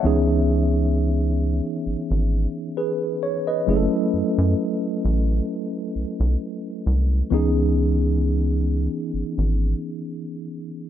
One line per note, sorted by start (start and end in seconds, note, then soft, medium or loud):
0.00 3.63 E3 medium
0.00 3.63 B3 medium
0.00 0.27 C#5 medium
0.00 0.26 E5 medium
0.04 1.61 C#2 loud
0.04 3.64 C#4 medium
0.04 3.64 D#4 medium
0.04 2.74 G#4 medium
1.86 1.96 G#1 soft
2.11 2.47 G#1 medium
2.77 3.20 G#4 medium
2.77 3.20 B4 medium
3.23 3.46 C#5 medium
3.47 3.90 B4 medium
3.47 3.90 D#5 medium
3.66 3.87 F#1 loud
3.66 7.27 F#3 medium
3.66 7.27 A3 medium
3.66 7.27 C#4 medium
3.66 7.28 E4 medium
3.66 3.76 G#4 medium
3.76 7.32 A4 medium
4.14 4.23 F#2 medium
4.38 4.55 F#2 loud
5.05 5.41 A1 loud
5.96 6.05 B1 soft
6.20 6.36 B1 medium
6.86 7.22 C2 medium
7.30 8.88 C#2 loud
7.30 10.90 E3 medium
7.30 10.90 B3 medium
7.30 10.90 C#4 medium
7.30 10.90 D#4 medium
7.30 10.90 G#4 medium
9.14 9.23 G#1 soft
9.38 9.74 G#1 medium